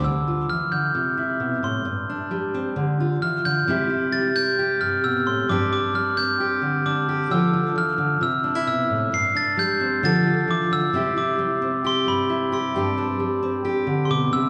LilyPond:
<<
  \new Staff \with { instrumentName = "Glockenspiel" } { \time 4/4 \key c \major \tempo 4 = 132 e'''4 f'''8 g'''2 c'''8~ | c'''4 r2 f'''8 g'''8~ | g'''4 a'''8 g'''4 f'''8 e'''8 c'''8 | d'''8 d'''8 f'''8 g'''4. d'''4 |
e'''4 f'''4 e'''4 e'''4 | c''''8 a'''8 g'''4 a'''4 d'''8 e'''8~ | e'''8 d'''4. c'''8 b''4 c'''8~ | c'''2~ c'''8.~ c'''32 c'''32 d'''8 e'''8 | }
  \new Staff \with { instrumentName = "Steel-string acoustic guitar" } { \time 4/4 \key c \major << { r8 f'4. r8 e'4. | r8 d'4 c'8 r8 f'4. | <g c' e' g'>8 e'4 c'8 g'2 | <g c' d' g'>8 d'4 c'8 g'4 d'8 g'8 |
<f d' f' a'>8 f'4. r8 d'16 e'4~ e'16 | r8 d'4 c'8 <f d' f' a'>8 f'4. | <g c' e' g'>8 e'4 c'8 g'4 e'8 g'8 | <g c' d' g'>8 d'4 c'8 g'2 | } \\ { d4 e8 d8 c4 b,8 a,8 | g,4 g4 d4 e8 d8 | c4 g4. g,8 b,8 a,8 | g,4 g4. d4. |
d4 e8 d8 c4 b,8 a,8 | g,4 g4 d4 e8 d8 | c4 g4. g,4. | g,4 g4. d8 b,8 c8 | } >> }
>>